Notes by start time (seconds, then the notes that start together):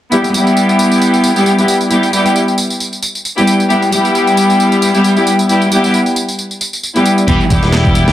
0.11 G3 B3 E4 G4, tambourine
0.24 tambourine
0.34 G3 B3 E4 G4, tambourine
0.47 tambourine
0.57 tambourine
0.69 tambourine
0.79 tambourine
0.91 tambourine
1.01 tambourine
1.14 tambourine
1.24 tambourine
1.36 G3 B3 E4 G4, tambourine
1.46 tambourine
1.58 G3 B3 E4 G4, tambourine
1.68 tambourine
1.81 tambourine
1.90 G3 B3 E4 G4, tambourine
2.03 tambourine
2.13 G3 B3 E4 G4, tambourine
2.26 tambourine
2.36 tambourine
2.48 tambourine
2.58 tambourine
2.70 tambourine
2.80 tambourine
2.93 tambourine
3.02 tambourine
3.15 tambourine
3.25 tambourine
3.38 G3 B3 E4 G4, tambourine
3.48 tambourine
3.60 tambourine
3.70 G3 B3 E4 G4, tambourine
3.82 tambourine
3.92 G3 B3 E4 G4, tambourine
4.05 tambourine
4.15 tambourine
4.27 tambourine
4.37 tambourine
4.50 tambourine
4.60 tambourine
4.72 tambourine
4.82 tambourine
4.94 G3 B3 E4 G4, tambourine
5.04 tambourine
5.17 G3 B3 E4 G4, tambourine
5.27 tambourine
5.39 tambourine
5.49 G3 B3 E4 G4, tambourine
5.62 tambourine
5.71 G3 B3 E4 G4, tambourine
5.84 tambourine
5.94 tambourine
6.06 tambourine
6.16 tambourine
6.28 tambourine
6.39 tambourine
6.51 tambourine
6.61 tambourine
6.73 tambourine
6.83 tambourine
6.96 G3 B3 E4 G4, tambourine
7.06 tambourine
7.18 tambourine
7.28 E1 E3 G3 B3 E4 G4, kick, closed hi-hat, tambourine
7.40 tambourine
7.50 E1 G3 B3 E4 G4, kick, closed hi-hat, tambourine
7.63 E1, snare, tambourine
7.72 snare, closed hi-hat, tambourine
7.85 kick, tambourine
7.95 closed hi-hat, tambourine
8.08 D2, snare, tambourine